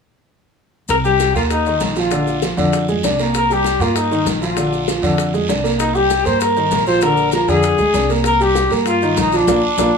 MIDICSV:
0, 0, Header, 1, 5, 480
1, 0, Start_track
1, 0, Key_signature, -3, "minor"
1, 0, Tempo, 306905
1, 1389, Time_signature, 4, 2, 24, 8
1, 15604, End_track
2, 0, Start_track
2, 0, Title_t, "Trumpet"
2, 0, Program_c, 0, 56
2, 1405, Note_on_c, 0, 70, 89
2, 1509, Note_off_c, 0, 70, 0
2, 1638, Note_on_c, 0, 67, 89
2, 2081, Note_off_c, 0, 67, 0
2, 2116, Note_on_c, 0, 65, 75
2, 2223, Note_off_c, 0, 65, 0
2, 2366, Note_on_c, 0, 63, 74
2, 2805, Note_off_c, 0, 63, 0
2, 3125, Note_on_c, 0, 65, 70
2, 3996, Note_off_c, 0, 65, 0
2, 5260, Note_on_c, 0, 70, 90
2, 5517, Note_on_c, 0, 67, 94
2, 5541, Note_off_c, 0, 70, 0
2, 5972, Note_on_c, 0, 65, 81
2, 5996, Note_off_c, 0, 67, 0
2, 6200, Note_on_c, 0, 63, 77
2, 6223, Note_off_c, 0, 65, 0
2, 6676, Note_off_c, 0, 63, 0
2, 6914, Note_on_c, 0, 65, 71
2, 7810, Note_off_c, 0, 65, 0
2, 9052, Note_on_c, 0, 63, 81
2, 9303, Note_on_c, 0, 67, 85
2, 9326, Note_off_c, 0, 63, 0
2, 9786, Note_on_c, 0, 72, 83
2, 9810, Note_off_c, 0, 67, 0
2, 10011, Note_on_c, 0, 70, 91
2, 10034, Note_off_c, 0, 72, 0
2, 10740, Note_off_c, 0, 70, 0
2, 10747, Note_on_c, 0, 72, 83
2, 10986, Note_on_c, 0, 70, 95
2, 11009, Note_off_c, 0, 72, 0
2, 11458, Note_off_c, 0, 70, 0
2, 11467, Note_on_c, 0, 70, 82
2, 11712, Note_on_c, 0, 68, 97
2, 11736, Note_off_c, 0, 70, 0
2, 12671, Note_off_c, 0, 68, 0
2, 12923, Note_on_c, 0, 70, 96
2, 13171, Note_on_c, 0, 67, 85
2, 13194, Note_off_c, 0, 70, 0
2, 13640, Note_off_c, 0, 67, 0
2, 13877, Note_on_c, 0, 65, 85
2, 14320, Note_off_c, 0, 65, 0
2, 14387, Note_on_c, 0, 63, 78
2, 14637, Note_on_c, 0, 62, 68
2, 14660, Note_off_c, 0, 63, 0
2, 15604, Note_off_c, 0, 62, 0
2, 15604, End_track
3, 0, Start_track
3, 0, Title_t, "Grand piano"
3, 0, Program_c, 1, 0
3, 1630, Note_on_c, 1, 55, 61
3, 1638, Note_on_c, 1, 67, 58
3, 2024, Note_off_c, 1, 55, 0
3, 2028, Note_off_c, 1, 67, 0
3, 2121, Note_on_c, 1, 58, 60
3, 2127, Note_on_c, 1, 70, 60
3, 2510, Note_off_c, 1, 58, 0
3, 2514, Note_off_c, 1, 70, 0
3, 2606, Note_on_c, 1, 63, 70
3, 2611, Note_on_c, 1, 51, 68
3, 2993, Note_off_c, 1, 63, 0
3, 2996, Note_off_c, 1, 51, 0
3, 3074, Note_on_c, 1, 53, 64
3, 3075, Note_on_c, 1, 65, 66
3, 3270, Note_off_c, 1, 53, 0
3, 3270, Note_off_c, 1, 65, 0
3, 3303, Note_on_c, 1, 50, 63
3, 3312, Note_on_c, 1, 62, 61
3, 3700, Note_off_c, 1, 50, 0
3, 3705, Note_off_c, 1, 62, 0
3, 3791, Note_on_c, 1, 53, 55
3, 3796, Note_on_c, 1, 65, 55
3, 3988, Note_off_c, 1, 53, 0
3, 3991, Note_off_c, 1, 65, 0
3, 4024, Note_on_c, 1, 50, 71
3, 4034, Note_on_c, 1, 62, 73
3, 4421, Note_off_c, 1, 50, 0
3, 4427, Note_off_c, 1, 62, 0
3, 4512, Note_on_c, 1, 56, 58
3, 4515, Note_on_c, 1, 68, 61
3, 4708, Note_off_c, 1, 56, 0
3, 4710, Note_off_c, 1, 68, 0
3, 4752, Note_on_c, 1, 74, 59
3, 4754, Note_on_c, 1, 62, 62
3, 4949, Note_off_c, 1, 74, 0
3, 4950, Note_off_c, 1, 62, 0
3, 4997, Note_on_c, 1, 58, 62
3, 4998, Note_on_c, 1, 70, 66
3, 5388, Note_off_c, 1, 58, 0
3, 5389, Note_off_c, 1, 70, 0
3, 5484, Note_on_c, 1, 55, 62
3, 5486, Note_on_c, 1, 67, 61
3, 5872, Note_off_c, 1, 55, 0
3, 5874, Note_off_c, 1, 67, 0
3, 5964, Note_on_c, 1, 58, 63
3, 5964, Note_on_c, 1, 70, 65
3, 6353, Note_off_c, 1, 58, 0
3, 6353, Note_off_c, 1, 70, 0
3, 6430, Note_on_c, 1, 51, 71
3, 6434, Note_on_c, 1, 63, 66
3, 6824, Note_off_c, 1, 51, 0
3, 6826, Note_off_c, 1, 63, 0
3, 6906, Note_on_c, 1, 53, 61
3, 6914, Note_on_c, 1, 65, 62
3, 7105, Note_off_c, 1, 53, 0
3, 7110, Note_off_c, 1, 65, 0
3, 7144, Note_on_c, 1, 50, 61
3, 7150, Note_on_c, 1, 62, 64
3, 7541, Note_off_c, 1, 50, 0
3, 7544, Note_off_c, 1, 62, 0
3, 7636, Note_on_c, 1, 65, 58
3, 7638, Note_on_c, 1, 53, 51
3, 7831, Note_off_c, 1, 65, 0
3, 7832, Note_off_c, 1, 53, 0
3, 7866, Note_on_c, 1, 50, 73
3, 7871, Note_on_c, 1, 62, 69
3, 8262, Note_off_c, 1, 50, 0
3, 8265, Note_off_c, 1, 62, 0
3, 8348, Note_on_c, 1, 56, 62
3, 8354, Note_on_c, 1, 68, 56
3, 8546, Note_off_c, 1, 56, 0
3, 8550, Note_off_c, 1, 68, 0
3, 8583, Note_on_c, 1, 62, 56
3, 8590, Note_on_c, 1, 74, 58
3, 8783, Note_off_c, 1, 62, 0
3, 8787, Note_off_c, 1, 74, 0
3, 8815, Note_on_c, 1, 58, 63
3, 8820, Note_on_c, 1, 70, 61
3, 9215, Note_off_c, 1, 58, 0
3, 9218, Note_off_c, 1, 70, 0
3, 9306, Note_on_c, 1, 55, 61
3, 9309, Note_on_c, 1, 67, 61
3, 9702, Note_off_c, 1, 55, 0
3, 9703, Note_off_c, 1, 67, 0
3, 9778, Note_on_c, 1, 58, 61
3, 9784, Note_on_c, 1, 70, 60
3, 10176, Note_off_c, 1, 58, 0
3, 10180, Note_off_c, 1, 70, 0
3, 10264, Note_on_c, 1, 51, 69
3, 10270, Note_on_c, 1, 63, 66
3, 10660, Note_off_c, 1, 51, 0
3, 10664, Note_off_c, 1, 63, 0
3, 10747, Note_on_c, 1, 53, 63
3, 10748, Note_on_c, 1, 65, 67
3, 10945, Note_off_c, 1, 53, 0
3, 10946, Note_off_c, 1, 65, 0
3, 10994, Note_on_c, 1, 50, 70
3, 10997, Note_on_c, 1, 62, 65
3, 11385, Note_off_c, 1, 50, 0
3, 11388, Note_off_c, 1, 62, 0
3, 11469, Note_on_c, 1, 53, 57
3, 11471, Note_on_c, 1, 65, 54
3, 11666, Note_off_c, 1, 53, 0
3, 11667, Note_off_c, 1, 65, 0
3, 11703, Note_on_c, 1, 50, 71
3, 11708, Note_on_c, 1, 62, 76
3, 12099, Note_off_c, 1, 50, 0
3, 12102, Note_off_c, 1, 62, 0
3, 12175, Note_on_c, 1, 56, 61
3, 12178, Note_on_c, 1, 68, 61
3, 12378, Note_off_c, 1, 56, 0
3, 12379, Note_off_c, 1, 68, 0
3, 12415, Note_on_c, 1, 62, 57
3, 12420, Note_on_c, 1, 74, 60
3, 12618, Note_off_c, 1, 62, 0
3, 12620, Note_off_c, 1, 74, 0
3, 12668, Note_on_c, 1, 58, 62
3, 12671, Note_on_c, 1, 70, 67
3, 13062, Note_off_c, 1, 58, 0
3, 13063, Note_off_c, 1, 70, 0
3, 13144, Note_on_c, 1, 55, 65
3, 13146, Note_on_c, 1, 67, 66
3, 13539, Note_off_c, 1, 55, 0
3, 13541, Note_off_c, 1, 67, 0
3, 13622, Note_on_c, 1, 58, 63
3, 13628, Note_on_c, 1, 70, 65
3, 14018, Note_off_c, 1, 58, 0
3, 14022, Note_off_c, 1, 70, 0
3, 14112, Note_on_c, 1, 51, 75
3, 14119, Note_on_c, 1, 63, 70
3, 14504, Note_off_c, 1, 51, 0
3, 14508, Note_off_c, 1, 63, 0
3, 14590, Note_on_c, 1, 53, 66
3, 14596, Note_on_c, 1, 65, 66
3, 14786, Note_off_c, 1, 53, 0
3, 14790, Note_off_c, 1, 65, 0
3, 14827, Note_on_c, 1, 58, 83
3, 14828, Note_on_c, 1, 62, 83
3, 14833, Note_on_c, 1, 65, 84
3, 14981, Note_off_c, 1, 58, 0
3, 14982, Note_off_c, 1, 62, 0
3, 14985, Note_off_c, 1, 65, 0
3, 15303, Note_on_c, 1, 62, 84
3, 15305, Note_on_c, 1, 65, 77
3, 15309, Note_on_c, 1, 58, 80
3, 15459, Note_off_c, 1, 62, 0
3, 15460, Note_off_c, 1, 65, 0
3, 15462, Note_off_c, 1, 58, 0
3, 15604, End_track
4, 0, Start_track
4, 0, Title_t, "Upright bass"
4, 0, Program_c, 2, 32
4, 1384, Note_on_c, 2, 36, 80
4, 2056, Note_off_c, 2, 36, 0
4, 2098, Note_on_c, 2, 39, 74
4, 2774, Note_off_c, 2, 39, 0
4, 2815, Note_on_c, 2, 34, 75
4, 3937, Note_off_c, 2, 34, 0
4, 4016, Note_on_c, 2, 41, 77
4, 4693, Note_off_c, 2, 41, 0
4, 4741, Note_on_c, 2, 36, 74
4, 5860, Note_off_c, 2, 36, 0
4, 5932, Note_on_c, 2, 43, 86
4, 6611, Note_off_c, 2, 43, 0
4, 6653, Note_on_c, 2, 34, 76
4, 7775, Note_off_c, 2, 34, 0
4, 7850, Note_on_c, 2, 41, 85
4, 8529, Note_off_c, 2, 41, 0
4, 8587, Note_on_c, 2, 36, 70
4, 9702, Note_off_c, 2, 36, 0
4, 9784, Note_on_c, 2, 43, 82
4, 10456, Note_off_c, 2, 43, 0
4, 10494, Note_on_c, 2, 34, 81
4, 11615, Note_off_c, 2, 34, 0
4, 11691, Note_on_c, 2, 41, 81
4, 12146, Note_off_c, 2, 41, 0
4, 12173, Note_on_c, 2, 38, 61
4, 12395, Note_off_c, 2, 38, 0
4, 12405, Note_on_c, 2, 36, 81
4, 13530, Note_off_c, 2, 36, 0
4, 13605, Note_on_c, 2, 43, 82
4, 14286, Note_off_c, 2, 43, 0
4, 14329, Note_on_c, 2, 34, 83
4, 14785, Note_off_c, 2, 34, 0
4, 14814, Note_on_c, 2, 34, 84
4, 14999, Note_off_c, 2, 34, 0
4, 15285, Note_on_c, 2, 34, 79
4, 15475, Note_off_c, 2, 34, 0
4, 15604, End_track
5, 0, Start_track
5, 0, Title_t, "Drums"
5, 1384, Note_on_c, 9, 70, 66
5, 1398, Note_on_c, 9, 74, 61
5, 1410, Note_on_c, 9, 60, 62
5, 1540, Note_off_c, 9, 70, 0
5, 1555, Note_off_c, 9, 74, 0
5, 1567, Note_off_c, 9, 60, 0
5, 1637, Note_on_c, 9, 70, 26
5, 1644, Note_on_c, 9, 60, 28
5, 1794, Note_off_c, 9, 70, 0
5, 1800, Note_off_c, 9, 60, 0
5, 1874, Note_on_c, 9, 70, 65
5, 1876, Note_on_c, 9, 73, 56
5, 1881, Note_on_c, 9, 60, 51
5, 2031, Note_off_c, 9, 70, 0
5, 2032, Note_off_c, 9, 73, 0
5, 2037, Note_off_c, 9, 60, 0
5, 2120, Note_on_c, 9, 73, 58
5, 2123, Note_on_c, 9, 70, 24
5, 2277, Note_off_c, 9, 73, 0
5, 2279, Note_off_c, 9, 70, 0
5, 2354, Note_on_c, 9, 60, 60
5, 2356, Note_on_c, 9, 70, 56
5, 2371, Note_on_c, 9, 74, 55
5, 2510, Note_off_c, 9, 60, 0
5, 2512, Note_off_c, 9, 70, 0
5, 2527, Note_off_c, 9, 74, 0
5, 2596, Note_on_c, 9, 70, 24
5, 2602, Note_on_c, 9, 60, 30
5, 2752, Note_off_c, 9, 70, 0
5, 2758, Note_off_c, 9, 60, 0
5, 2818, Note_on_c, 9, 70, 61
5, 2830, Note_on_c, 9, 73, 66
5, 2834, Note_on_c, 9, 60, 31
5, 2834, Note_on_c, 9, 61, 72
5, 2974, Note_off_c, 9, 70, 0
5, 2987, Note_off_c, 9, 73, 0
5, 2990, Note_off_c, 9, 60, 0
5, 2990, Note_off_c, 9, 61, 0
5, 3060, Note_on_c, 9, 73, 65
5, 3061, Note_on_c, 9, 70, 26
5, 3070, Note_on_c, 9, 60, 29
5, 3217, Note_off_c, 9, 70, 0
5, 3217, Note_off_c, 9, 73, 0
5, 3226, Note_off_c, 9, 60, 0
5, 3300, Note_on_c, 9, 70, 64
5, 3307, Note_on_c, 9, 60, 57
5, 3456, Note_off_c, 9, 70, 0
5, 3464, Note_off_c, 9, 60, 0
5, 3548, Note_on_c, 9, 60, 30
5, 3554, Note_on_c, 9, 70, 24
5, 3704, Note_off_c, 9, 60, 0
5, 3710, Note_off_c, 9, 70, 0
5, 3788, Note_on_c, 9, 60, 49
5, 3790, Note_on_c, 9, 70, 64
5, 3793, Note_on_c, 9, 73, 58
5, 3945, Note_off_c, 9, 60, 0
5, 3947, Note_off_c, 9, 70, 0
5, 3950, Note_off_c, 9, 73, 0
5, 4026, Note_on_c, 9, 73, 62
5, 4030, Note_on_c, 9, 70, 25
5, 4183, Note_off_c, 9, 73, 0
5, 4187, Note_off_c, 9, 70, 0
5, 4263, Note_on_c, 9, 74, 60
5, 4270, Note_on_c, 9, 70, 56
5, 4275, Note_on_c, 9, 60, 60
5, 4420, Note_off_c, 9, 74, 0
5, 4427, Note_off_c, 9, 70, 0
5, 4431, Note_off_c, 9, 60, 0
5, 4510, Note_on_c, 9, 70, 26
5, 4516, Note_on_c, 9, 60, 29
5, 4667, Note_off_c, 9, 70, 0
5, 4672, Note_off_c, 9, 60, 0
5, 4746, Note_on_c, 9, 73, 66
5, 4749, Note_on_c, 9, 70, 66
5, 4760, Note_on_c, 9, 60, 30
5, 4760, Note_on_c, 9, 61, 71
5, 4903, Note_off_c, 9, 73, 0
5, 4906, Note_off_c, 9, 70, 0
5, 4916, Note_off_c, 9, 60, 0
5, 4916, Note_off_c, 9, 61, 0
5, 4983, Note_on_c, 9, 73, 62
5, 4989, Note_on_c, 9, 70, 26
5, 5005, Note_on_c, 9, 60, 30
5, 5139, Note_off_c, 9, 73, 0
5, 5145, Note_off_c, 9, 70, 0
5, 5161, Note_off_c, 9, 60, 0
5, 5229, Note_on_c, 9, 74, 62
5, 5231, Note_on_c, 9, 70, 64
5, 5235, Note_on_c, 9, 60, 62
5, 5385, Note_off_c, 9, 74, 0
5, 5387, Note_off_c, 9, 70, 0
5, 5392, Note_off_c, 9, 60, 0
5, 5473, Note_on_c, 9, 60, 29
5, 5485, Note_on_c, 9, 70, 25
5, 5630, Note_off_c, 9, 60, 0
5, 5642, Note_off_c, 9, 70, 0
5, 5699, Note_on_c, 9, 60, 51
5, 5708, Note_on_c, 9, 73, 57
5, 5725, Note_on_c, 9, 70, 64
5, 5855, Note_off_c, 9, 60, 0
5, 5864, Note_off_c, 9, 73, 0
5, 5882, Note_off_c, 9, 70, 0
5, 5948, Note_on_c, 9, 73, 62
5, 5959, Note_on_c, 9, 70, 25
5, 6105, Note_off_c, 9, 73, 0
5, 6115, Note_off_c, 9, 70, 0
5, 6185, Note_on_c, 9, 74, 62
5, 6189, Note_on_c, 9, 60, 65
5, 6195, Note_on_c, 9, 70, 62
5, 6342, Note_off_c, 9, 74, 0
5, 6345, Note_off_c, 9, 60, 0
5, 6352, Note_off_c, 9, 70, 0
5, 6434, Note_on_c, 9, 60, 31
5, 6447, Note_on_c, 9, 70, 25
5, 6590, Note_off_c, 9, 60, 0
5, 6603, Note_off_c, 9, 70, 0
5, 6660, Note_on_c, 9, 73, 64
5, 6669, Note_on_c, 9, 60, 30
5, 6669, Note_on_c, 9, 61, 71
5, 6671, Note_on_c, 9, 70, 67
5, 6816, Note_off_c, 9, 73, 0
5, 6825, Note_off_c, 9, 60, 0
5, 6825, Note_off_c, 9, 61, 0
5, 6827, Note_off_c, 9, 70, 0
5, 6912, Note_on_c, 9, 73, 63
5, 6918, Note_on_c, 9, 60, 28
5, 6921, Note_on_c, 9, 70, 25
5, 7069, Note_off_c, 9, 73, 0
5, 7074, Note_off_c, 9, 60, 0
5, 7077, Note_off_c, 9, 70, 0
5, 7137, Note_on_c, 9, 74, 62
5, 7143, Note_on_c, 9, 60, 61
5, 7149, Note_on_c, 9, 70, 69
5, 7294, Note_off_c, 9, 74, 0
5, 7300, Note_off_c, 9, 60, 0
5, 7305, Note_off_c, 9, 70, 0
5, 7384, Note_on_c, 9, 60, 28
5, 7399, Note_on_c, 9, 70, 25
5, 7541, Note_off_c, 9, 60, 0
5, 7555, Note_off_c, 9, 70, 0
5, 7628, Note_on_c, 9, 73, 59
5, 7629, Note_on_c, 9, 60, 51
5, 7639, Note_on_c, 9, 70, 66
5, 7784, Note_off_c, 9, 73, 0
5, 7785, Note_off_c, 9, 60, 0
5, 7796, Note_off_c, 9, 70, 0
5, 7856, Note_on_c, 9, 73, 62
5, 7878, Note_on_c, 9, 70, 24
5, 8012, Note_off_c, 9, 73, 0
5, 8034, Note_off_c, 9, 70, 0
5, 8094, Note_on_c, 9, 74, 61
5, 8105, Note_on_c, 9, 60, 64
5, 8122, Note_on_c, 9, 70, 61
5, 8250, Note_off_c, 9, 74, 0
5, 8262, Note_off_c, 9, 60, 0
5, 8279, Note_off_c, 9, 70, 0
5, 8346, Note_on_c, 9, 60, 30
5, 8352, Note_on_c, 9, 70, 25
5, 8503, Note_off_c, 9, 60, 0
5, 8508, Note_off_c, 9, 70, 0
5, 8570, Note_on_c, 9, 73, 63
5, 8590, Note_on_c, 9, 60, 32
5, 8590, Note_on_c, 9, 61, 70
5, 8596, Note_on_c, 9, 70, 64
5, 8727, Note_off_c, 9, 73, 0
5, 8747, Note_off_c, 9, 60, 0
5, 8747, Note_off_c, 9, 61, 0
5, 8752, Note_off_c, 9, 70, 0
5, 8825, Note_on_c, 9, 73, 66
5, 8834, Note_on_c, 9, 60, 29
5, 8843, Note_on_c, 9, 70, 24
5, 8981, Note_off_c, 9, 73, 0
5, 8991, Note_off_c, 9, 60, 0
5, 9000, Note_off_c, 9, 70, 0
5, 9065, Note_on_c, 9, 70, 61
5, 9067, Note_on_c, 9, 74, 64
5, 9072, Note_on_c, 9, 60, 64
5, 9222, Note_off_c, 9, 70, 0
5, 9223, Note_off_c, 9, 74, 0
5, 9228, Note_off_c, 9, 60, 0
5, 9304, Note_on_c, 9, 70, 26
5, 9317, Note_on_c, 9, 60, 31
5, 9460, Note_off_c, 9, 70, 0
5, 9473, Note_off_c, 9, 60, 0
5, 9538, Note_on_c, 9, 73, 60
5, 9542, Note_on_c, 9, 70, 66
5, 9553, Note_on_c, 9, 60, 52
5, 9694, Note_off_c, 9, 73, 0
5, 9699, Note_off_c, 9, 70, 0
5, 9709, Note_off_c, 9, 60, 0
5, 9779, Note_on_c, 9, 73, 62
5, 9789, Note_on_c, 9, 70, 24
5, 9935, Note_off_c, 9, 73, 0
5, 9945, Note_off_c, 9, 70, 0
5, 10016, Note_on_c, 9, 74, 60
5, 10020, Note_on_c, 9, 70, 60
5, 10038, Note_on_c, 9, 60, 62
5, 10173, Note_off_c, 9, 74, 0
5, 10177, Note_off_c, 9, 70, 0
5, 10194, Note_off_c, 9, 60, 0
5, 10269, Note_on_c, 9, 70, 26
5, 10282, Note_on_c, 9, 60, 32
5, 10425, Note_off_c, 9, 70, 0
5, 10438, Note_off_c, 9, 60, 0
5, 10498, Note_on_c, 9, 70, 64
5, 10509, Note_on_c, 9, 60, 31
5, 10509, Note_on_c, 9, 61, 72
5, 10511, Note_on_c, 9, 73, 66
5, 10655, Note_off_c, 9, 70, 0
5, 10666, Note_off_c, 9, 60, 0
5, 10666, Note_off_c, 9, 61, 0
5, 10667, Note_off_c, 9, 73, 0
5, 10736, Note_on_c, 9, 70, 26
5, 10753, Note_on_c, 9, 60, 29
5, 10756, Note_on_c, 9, 73, 64
5, 10892, Note_off_c, 9, 70, 0
5, 10909, Note_off_c, 9, 60, 0
5, 10913, Note_off_c, 9, 73, 0
5, 10967, Note_on_c, 9, 70, 63
5, 10973, Note_on_c, 9, 74, 59
5, 10988, Note_on_c, 9, 60, 62
5, 11123, Note_off_c, 9, 70, 0
5, 11130, Note_off_c, 9, 74, 0
5, 11145, Note_off_c, 9, 60, 0
5, 11214, Note_on_c, 9, 70, 26
5, 11231, Note_on_c, 9, 60, 30
5, 11370, Note_off_c, 9, 70, 0
5, 11387, Note_off_c, 9, 60, 0
5, 11447, Note_on_c, 9, 70, 64
5, 11461, Note_on_c, 9, 73, 54
5, 11467, Note_on_c, 9, 60, 55
5, 11604, Note_off_c, 9, 70, 0
5, 11618, Note_off_c, 9, 73, 0
5, 11623, Note_off_c, 9, 60, 0
5, 11704, Note_on_c, 9, 70, 27
5, 11708, Note_on_c, 9, 73, 60
5, 11860, Note_off_c, 9, 70, 0
5, 11865, Note_off_c, 9, 73, 0
5, 11933, Note_on_c, 9, 70, 59
5, 11942, Note_on_c, 9, 74, 62
5, 11948, Note_on_c, 9, 60, 62
5, 12089, Note_off_c, 9, 70, 0
5, 12098, Note_off_c, 9, 74, 0
5, 12104, Note_off_c, 9, 60, 0
5, 12169, Note_on_c, 9, 70, 24
5, 12187, Note_on_c, 9, 60, 33
5, 12325, Note_off_c, 9, 70, 0
5, 12344, Note_off_c, 9, 60, 0
5, 12418, Note_on_c, 9, 60, 31
5, 12418, Note_on_c, 9, 61, 70
5, 12418, Note_on_c, 9, 70, 63
5, 12418, Note_on_c, 9, 73, 66
5, 12574, Note_off_c, 9, 73, 0
5, 12575, Note_off_c, 9, 60, 0
5, 12575, Note_off_c, 9, 61, 0
5, 12575, Note_off_c, 9, 70, 0
5, 12653, Note_on_c, 9, 60, 29
5, 12658, Note_on_c, 9, 73, 64
5, 12667, Note_on_c, 9, 70, 23
5, 12810, Note_off_c, 9, 60, 0
5, 12814, Note_off_c, 9, 73, 0
5, 12824, Note_off_c, 9, 70, 0
5, 12889, Note_on_c, 9, 60, 63
5, 12899, Note_on_c, 9, 74, 68
5, 12913, Note_on_c, 9, 70, 67
5, 13045, Note_off_c, 9, 60, 0
5, 13056, Note_off_c, 9, 74, 0
5, 13069, Note_off_c, 9, 70, 0
5, 13135, Note_on_c, 9, 60, 31
5, 13148, Note_on_c, 9, 70, 26
5, 13292, Note_off_c, 9, 60, 0
5, 13304, Note_off_c, 9, 70, 0
5, 13368, Note_on_c, 9, 73, 58
5, 13377, Note_on_c, 9, 60, 55
5, 13388, Note_on_c, 9, 70, 68
5, 13524, Note_off_c, 9, 73, 0
5, 13533, Note_off_c, 9, 60, 0
5, 13544, Note_off_c, 9, 70, 0
5, 13609, Note_on_c, 9, 73, 64
5, 13636, Note_on_c, 9, 70, 26
5, 13765, Note_off_c, 9, 73, 0
5, 13793, Note_off_c, 9, 70, 0
5, 13847, Note_on_c, 9, 74, 58
5, 13853, Note_on_c, 9, 60, 62
5, 13868, Note_on_c, 9, 70, 57
5, 14003, Note_off_c, 9, 74, 0
5, 14009, Note_off_c, 9, 60, 0
5, 14024, Note_off_c, 9, 70, 0
5, 14097, Note_on_c, 9, 60, 30
5, 14108, Note_on_c, 9, 70, 25
5, 14253, Note_off_c, 9, 60, 0
5, 14264, Note_off_c, 9, 70, 0
5, 14339, Note_on_c, 9, 73, 65
5, 14341, Note_on_c, 9, 70, 65
5, 14346, Note_on_c, 9, 60, 30
5, 14346, Note_on_c, 9, 61, 74
5, 14495, Note_off_c, 9, 73, 0
5, 14497, Note_off_c, 9, 70, 0
5, 14503, Note_off_c, 9, 60, 0
5, 14503, Note_off_c, 9, 61, 0
5, 14575, Note_on_c, 9, 73, 65
5, 14579, Note_on_c, 9, 70, 26
5, 14592, Note_on_c, 9, 60, 29
5, 14731, Note_off_c, 9, 73, 0
5, 14736, Note_off_c, 9, 70, 0
5, 14748, Note_off_c, 9, 60, 0
5, 14818, Note_on_c, 9, 74, 92
5, 14825, Note_on_c, 9, 70, 94
5, 14826, Note_on_c, 9, 60, 91
5, 14974, Note_off_c, 9, 74, 0
5, 14982, Note_off_c, 9, 70, 0
5, 14983, Note_off_c, 9, 60, 0
5, 15297, Note_on_c, 9, 70, 90
5, 15304, Note_on_c, 9, 74, 82
5, 15309, Note_on_c, 9, 60, 86
5, 15453, Note_off_c, 9, 70, 0
5, 15460, Note_off_c, 9, 74, 0
5, 15465, Note_off_c, 9, 60, 0
5, 15604, End_track
0, 0, End_of_file